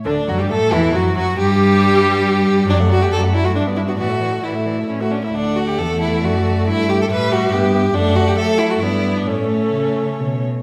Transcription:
<<
  \new Staff \with { instrumentName = "Violin" } { \time 3/4 \key d \major \tempo 4 = 136 d'8 fis'16 g'16 a'8 e'8 fis'8 fis'8 | g'2. | d''16 fis''16 d''16 fis''16 d''16 fis''16 d''16 fis''16 e''16 d''16 e''16 d''16 | d''16 e''16 d''16 e''16 d''16 e''16 d''16 e''16 cis''16 e''16 cis''16 e''16 |
fis''2 d''4 | e''2. | fis''4 e''4 d''4 | cis''2~ cis''8 r8 | }
  \new Staff \with { instrumentName = "Violin" } { \time 3/4 \key d \major d'8 fis'16 g'16 a'8 e'8 fis'8 fis'8 | g'2. | d'8 fis'16 g'16 a'8 e'16 fis'16 d'8 e'16 fis'16 | fis'4 e'4 r16 fis'16 d'16 e'16 |
d'8 fis'16 g'16 a'8 e'8 fis'4 | e'8 g'16 a'16 b'8 fis'8 g'4 | d'8 fis'16 g'16 a'8 e'16 fis'16 e'8. d'16 | cis'2~ cis'8 r8 | }
  \new Staff \with { instrumentName = "Viola" } { \time 3/4 \key d \major d8 fis16 g16 a8 e8 fis8 fis8 | g2. | fis16 a16 fis16 a16 fis16 a16 fis16 a16 d'16 b16 d'16 b16 | e16 a16 e16 a16 e16 a16 e16 a16 cis'16 a16 cis'16 a16 |
a2.~ | a4 g4 b8 b8 | a4 a4 b4 | a2~ a8 r8 | }
  \new Staff \with { instrumentName = "Cello" } { \clef bass \time 3/4 \key d \major d,8 fis,16 g,16 a,8 e,8 fis,8 fis,8 | g,2. | fis,4 fis,4 g,4 | a,4 a,4 a,4 |
d,4 e,4 fis,4 | g,4 a,4 g,4 | fis,4 fis4 g,4 | a,4 cis4 b,4 | }
>>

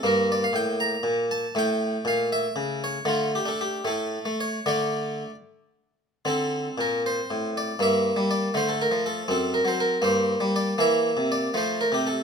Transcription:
<<
  \new Staff \with { instrumentName = "Harpsichord" } { \time 6/8 \key d \minor \tempo 4. = 79 bes'8 d''16 f''16 g''8 bes''4 a''8 | g''4 f''8 e''4 cis''8 | f'8 g'16 a'16 g'8 a'4 cis''8 | d''4. r4. |
a'4 bes'8 c''4 d''8 | e''4 d''8 c''16 a'16 bes'8 a'8 | a'8 bes'16 c''16 bes'8 c''4 d''8 | e''4 d''8 c''8 bes'16 g'16 a'8 | }
  \new Staff \with { instrumentName = "Harpsichord" } { \clef bass \time 6/8 \key d \minor << { bes2. | a2. | a4. a4. | r2. |
c'2. | bes4. a4. | c'4. bes4. | bes4. a4. | } \\ { g,4 a,4 bes,4 | a,4 bes,4 cis4 | d8. d'8. a,8. a8. | <d a d'>4. r4. |
d4 bes,4 a,4 | g,8. g8. d8. f8. | fis,8. fis8. g,8. g8. | e8. c8. f8. c8. | } >> }
>>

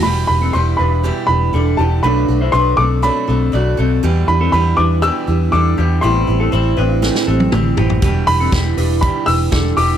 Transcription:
<<
  \new Staff \with { instrumentName = "Upright piano" } { \time 4/4 \key e \minor \tempo 4 = 120 b''8 b''8 c'''8 b''4 b''4 a''8 | b''4 c'''8 d'''8 b''4. r8 | r8 b''8 b''8 d'''8 e'''4 d'''4 | c'''2 r2 |
r8 b''4. b''8 e'''4 d'''8 | }
  \new Staff \with { instrumentName = "Clean electric guitar" } { \time 4/4 \key e \minor <b g'>8. <c' a'>16 <b g'>8 <d' b'>8 <b g'>4 <d' a'>8 <b g'>8 | <d' b'>8. <e' c''>16 <d' b'>8 <c' a'>4 <c' a'>8 <fis' d''>8 <c' a'>8 | <b g'>8. <c' a'>16 <b g'>8 <d' b'>8 <b g'>4 <d' a'>8 <b g'>8 | <b e'>8. <c' a'>16 <e' c''>8 <d' b'>4 <c' a'>8 <c' g'>8 <b g'>8 |
<b g'>8. <c' a'>16 <b g'>8 <d' b'>8 <b g'>4 <d' a'>8 <b g'>8 | }
  \new Staff \with { instrumentName = "Steel-string acoustic guitar" } { \time 4/4 \key e \minor <e, b, e g d' e'>8 <e g d' e'>8 <e g d' e'>8 <e g d' e'>8 <e, b, e g d' e'>8 <e g d' e'>8 <e g d' e'>8 <e g d' e'>8 | <b, fis a d' fis'>8 <a d' fis'>8 <fis a d' fis'>8 <a d' fis'>8 <b, fis a d' fis'>8 <a d' fis'>8 <fis a d' fis'>8 <a d' fis'>8 | <e, b, e g d' e'>8 <e g d' e'>8 <e g d' e'>8 <e g d' e'>8 <e, b, e g d' e'>8 <e g d' e'>8 <e g d' e'>8 <e g d' e'>8 | <a, e g c' e'>8 <g c' e'>8 <e g c' e'>8 <g c' e'>8 <a, e g c' e'>8 <g c' e'>8 <e g c' e'>8 <g c' e'>8 |
<e, b, e g d' e'>8 <e g d' e'>8 <e g d' e'>8 <e g d' e'>8 <e, b, e g d' e'>8 <e g d' e'>8 <e g d' e'>8 <e g d' e'>8 | }
  \new Staff \with { instrumentName = "Fingered electric bass" } { \clef bass \time 4/4 \key e \minor e,,8 e,,8 e,,8 e,,8. r16 e,,8 e,,8 e,,8 | b,,8 b,,8 b,,8 b,,8. r16 b,,8 b,,8 b,,8 | e,8 e,8 e,8 e,8. r16 e,8 e,8 e,8 | a,,8 a,,8 a,,8 a,,8. r16 a,,8 a,,8 a,,8 |
e,,8 e,,8 e,,8 e,,8. r16 e,,8 e,,8 e,,8 | }
  \new DrumStaff \with { instrumentName = "Drums" } \drummode { \time 4/4 r4 r4 r4 r4 | r4 r4 r4 r4 | r4 r4 r4 r4 | r4 r4 sn16 sn8 tommh16 toml8 tomfh16 tomfh16 |
<hh bd>8 hho8 <hh bd sn>8 hho8 <hh bd>8 hho8 <hh bd sn>8 hho8 | }
>>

